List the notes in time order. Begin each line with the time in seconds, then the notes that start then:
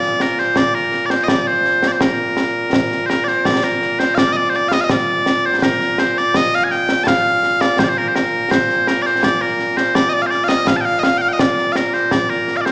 Already playing: A#2 D5
0.02 snare
0.20 A#4, snare
0.38 C5, snare
0.56 D5, concert bass drum, snare
0.75 A#4
0.92 snare
1.06 D5
1.10 C5, snare
1.24 D#5
1.28 D5, concert bass drum, snare
1.39 D5
1.47 C5
1.65 snare
1.83 snare
1.88 D5
1.92 C5
2.01 A#4, concert bass drum, snare
2.37 snare
2.73 concert bass drum, snare
2.91 snare
3.06 A#4 C5, snare
3.24 C5 D5, snare
3.45 D5, concert bass drum, snare
3.64 A#4
3.82 snare
3.99 C5, snare
4.15 D5 F5, concert bass drum, snare
4.33 D#5
4.37 D5
4.49 C5
4.54 D5, snare
4.68 F5, snare
4.73 D#5
4.81 D#5 F5
4.89 D5, concert bass drum, snare
5.26 snare
5.45 C5
5.56 C5
5.62 A#4, concert bass drum, snare
5.81 snare
5.98 C5, snare
6.17 D5, snare
6.34 D#5, concert bass drum, snare
6.55 F5
6.64 G#5
6.71 G5, snare
6.89 snare
7.04 A5, concert bass drum, snare
7.08 F5
7.43 snare
7.61 D5, snare
7.79 C5, concert bass drum, snare
7.84 D5
7.89 C5
7.98 A#4
8.08 C5
8.16 A#4, snare
8.51 C5, concert bass drum, snare
8.69 snare
8.87 A#4, snare
9.02 C5 D5, snare
9.23 D5, concert bass drum, snare
9.41 A#4
9.59 snare
9.77 C5, snare
9.95 D5, concert bass drum, snare
10.09 D#5
10.13 D5
10.22 F5
10.26 C5
10.30 D5, snare
10.44 F5
10.48 D#5, snare
10.67 F5, concert bass drum, snare
10.77 A5
10.81 G5
10.85 F5
10.99 D#5
11.03 F5, snare
11.18 F5 G5
11.29 G5
11.33 D#5
11.39 D5, concert bass drum, snare
11.58 snare
11.72 F5, snare
11.76 A#4
11.93 C5, snare
12.11 D5, concert bass drum, snare
12.30 A#4
12.48 snare
12.57 F5
12.61 D5
12.65 C5, snare